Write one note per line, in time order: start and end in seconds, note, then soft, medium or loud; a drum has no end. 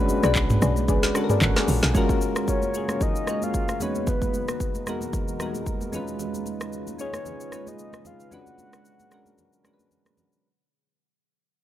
0.00 0.21 B1 loud
0.00 1.93 D3 medium
0.00 0.14 G#3 loud
0.00 1.91 G#3 medium
0.00 1.91 B3 medium
0.00 0.15 C#4 loud
0.00 0.15 D4 loud
0.00 0.16 F#4 loud
0.00 0.16 B4 loud
0.08 high conga medium
0.08 shaker medium
0.23 0.59 B1 loud
0.23 0.97 G#3 medium
0.23 0.97 C#4 medium
0.23 0.98 D4 medium
0.23 0.98 F#4 medium
0.23 0.32 G#4 medium
0.23 0.32 B4 medium
0.23 0.99 B4 loud
0.23 0.32 D5 medium
0.23 cross-stick loud
0.23 shaker medium
0.35 kick medium
0.35 clap loud
0.35 shaker medium
0.50 mid tom loud
0.50 high conga medium
0.50 shaker medium
0.62 1.11 B1 loud
0.62 0.72 G#4 medium
0.62 0.72 B4 medium
0.62 0.73 D5 medium
0.62 cross-stick medium
0.62 shaker loud
0.76 high conga medium
0.76 shaker medium
0.88 1.26 G#4 medium
0.88 1.26 B4 medium
0.88 1.26 D5 loud
0.88 kick loud
0.88 low conga medium
0.88 shaker medium
1.03 snare medium
1.03 shaker medium
1.14 1.58 G#3 medium
1.14 1.42 C#4 medium
1.14 1.42 D4 medium
1.14 1.42 F#4 medium
1.14 1.23 A4 medium
1.14 cross-stick loud
1.14 shaker loud
1.24 1.46 A#4 medium
1.29 1.38 G#4 medium
1.29 1.38 B4 medium
1.29 1.38 D5 medium
1.29 mid tom medium
1.29 high conga medium
1.29 shaker medium
1.41 1.55 G#1 medium
1.41 1.56 C#5 medium
1.41 1.56 F#5 medium
1.41 kick loud
1.41 clap loud
1.41 low conga medium
1.41 shaker medium
1.56 1.68 G#4 medium
1.56 1.68 D5 medium
1.56 cross-stick medium
1.56 snare medium
1.56 high conga medium
1.56 shaker medium
1.68 1.82 A#1 medium
1.68 1.83 F4 medium
1.68 1.83 A#4 medium
1.68 open hi-hat medium
1.68 low conga medium
1.68 shaker medium
1.83 1.94 B1 loud
1.83 2.09 D4 medium
1.83 2.08 G#4 medium
1.83 snare medium
1.83 shaker soft
1.94 3.79 F#2 medium
1.94 3.79 C#3 medium
1.94 2.59 G#3 loud
1.94 8.28 G#3 medium
1.94 3.79 A#3 medium
1.94 2.59 C#4 loud
1.94 2.60 F4 loud
1.94 2.60 F#4 loud
1.94 2.61 A#4 loud
1.94 3.79 F5 medium
1.94 kick loud
1.94 low conga medium
1.94 shaker medium
2.09 kick medium
2.09 high conga medium
2.09 shaker medium
2.21 high conga medium
2.21 shaker medium
2.36 cross-stick loud
2.36 shaker medium
2.48 3.04 C#5 loud
2.48 kick medium
2.48 shaker medium
2.62 high conga medium
2.62 shaker medium
2.73 3.17 G#3 medium
2.73 3.18 C#4 medium
2.73 3.18 F4 medium
2.73 3.19 F#4 medium
2.73 3.19 G#4 medium
2.73 shaker medium
2.89 cross-stick medium
2.89 high conga medium
2.89 shaker medium
3.01 3.45 D#5 loud
3.01 kick loud
3.01 low conga medium
3.01 shaker medium
3.16 shaker medium
3.27 3.79 G#3 medium
3.27 3.81 C#4 medium
3.27 3.81 F4 medium
3.27 3.81 F#4 medium
3.27 3.82 C#5 medium
3.27 cross-stick medium
3.27 high conga soft
3.27 shaker medium
3.42 3.84 F5 loud
3.42 high conga medium
3.42 shaker medium
3.54 kick medium
3.54 shaker medium
3.68 cross-stick medium
3.68 high conga medium
3.68 shaker soft
3.80 4.66 E2 medium
3.80 5.91 E2 medium
3.80 5.91 B2 medium
3.80 4.66 G#3 medium
3.80 4.66 B3 medium
3.80 8.28 D#4 medium
3.80 4.67 D#4 medium
3.80 5.91 F#4 medium
3.80 4.67 F#4 medium
3.80 4.67 B4 medium
3.80 4.08 C#5 loud
3.80 5.91 A#5 medium
3.80 low conga medium
3.80 shaker medium
3.95 shaker soft
4.07 5.10 B4 medium
4.07 kick loud
4.07 low conga medium
4.07 shaker medium
4.22 kick medium
4.22 high conga medium
4.22 shaker medium
4.33 high conga medium
4.33 shaker medium
4.48 cross-stick loud
4.48 shaker medium
4.60 kick medium
4.60 shaker medium
4.75 high conga medium
4.75 shaker medium
4.86 5.30 E2 medium
4.86 5.30 G#3 medium
4.86 5.31 B3 medium
4.86 5.31 D#4 medium
4.86 5.31 F#4 medium
4.86 5.32 A#4 loud
4.86 cross-stick medium
4.86 shaker medium
5.01 high conga medium
5.01 shaker medium
5.13 kick loud
5.13 low conga medium
5.13 shaker medium
5.28 shaker medium
5.39 5.93 E2 medium
5.39 5.47 G3 medium
5.39 5.93 B3 medium
5.39 5.93 D#4 medium
5.39 5.94 F#4 medium
5.39 5.94 A#4 loud
5.39 cross-stick medium
5.39 high conga soft
5.39 shaker medium
5.46 5.91 G#3 medium
5.55 high conga medium
5.55 shaker medium
5.66 kick medium
5.66 shaker medium
5.81 high conga medium
5.81 shaker soft
5.92 8.30 C#3 medium
5.92 6.78 G#3 medium
5.92 6.79 C#4 medium
5.92 6.79 D#4 medium
5.92 8.30 F4 medium
5.92 6.79 F4 medium
5.92 8.30 B4 medium
5.92 6.80 B4 loud
5.92 low conga medium
5.92 shaker medium
6.08 shaker soft
6.19 low conga medium
6.19 shaker medium
6.34 high conga medium
6.34 shaker medium
6.46 high conga medium
6.46 shaker medium
6.61 cross-stick loud
6.61 shaker medium
6.73 shaker medium
6.87 high conga medium
6.87 shaker soft
6.98 7.42 G#3 medium
6.98 7.43 C#4 medium
6.98 7.43 D#4 medium
6.98 7.44 F4 medium
6.98 7.44 G#4 medium
6.98 7.70 C#5 loud
6.98 shaker medium
7.13 cross-stick medium
7.13 high conga medium
7.13 shaker medium
7.26 low conga medium
7.26 shaker medium
7.40 shaker medium
7.51 8.17 G#3 medium
7.51 8.17 C#4 medium
7.51 8.17 D#4 medium
7.51 8.18 F4 medium
7.51 8.18 B4 medium
7.51 cross-stick medium
7.51 high conga soft
7.51 shaker medium
7.67 8.08 D#5 medium
7.67 high conga medium
7.67 shaker medium
7.79 shaker medium
7.93 cross-stick medium
7.93 high conga medium
7.93 shaker soft
8.05 8.35 F5 loud
8.05 low conga medium
8.05 shaker medium
8.20 shaker soft
8.31 10.42 B2 medium
8.31 10.42 D3 medium
8.31 10.42 F#3 medium
8.31 8.96 G#3 medium
8.31 8.97 C#4 medium
8.31 8.97 D4 medium
8.31 8.98 F#4 medium
8.31 10.42 G#4 medium
8.31 8.98 B4 loud
8.31 10.42 C#5 medium
8.31 9.92 F#5 loud
8.31 low conga medium
8.31 shaker medium
8.46 high conga medium
8.46 shaker medium
8.58 high conga medium
8.58 shaker medium
8.73 cross-stick loud
8.73 shaker medium
8.85 shaker medium
9.00 high conga medium
9.00 shaker soft
9.11 9.55 G#3 medium
9.11 9.55 C#4 medium
9.11 9.55 D4 medium
9.11 9.56 F#4 medium
9.11 9.56 A#4 loud
9.11 cross-stick medium
9.11 shaker medium
9.26 high conga medium
9.26 shaker medium
9.38 low conga medium
9.38 shaker medium
9.53 shaker medium
9.64 10.29 G#3 medium
9.64 10.29 C#4 medium
9.64 10.30 D4 medium
9.64 10.30 F#4 medium
9.64 9.73 A#4 medium
9.64 cross-stick medium
9.64 high conga medium
9.64 shaker medium
9.74 10.34 B4 medium
9.79 high conga medium
9.79 shaker medium
9.91 low conga medium
9.91 shaker medium
10.05 cross-stick medium
10.05 high conga medium
10.05 shaker soft
10.17 low conga medium
10.17 shaker medium
10.32 shaker soft